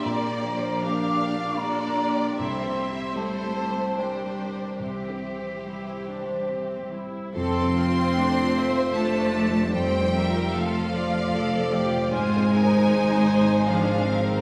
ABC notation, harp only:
X:1
M:3/4
L:1/16
Q:1/4=76
K:Cmix
V:1 name="Harp"
[B,,B,DGd]2 F,2 G2 F2 D2 B,2 | C,2 C2 G4 G2 C2 | C,2 G,2 G2 c2 G2 C2 | F,, C, C F a c f2 F C F, C, |
F,,2 C F A c f A F C A, C, | _A,, C, C c _A2 c' A c C _A,2 |]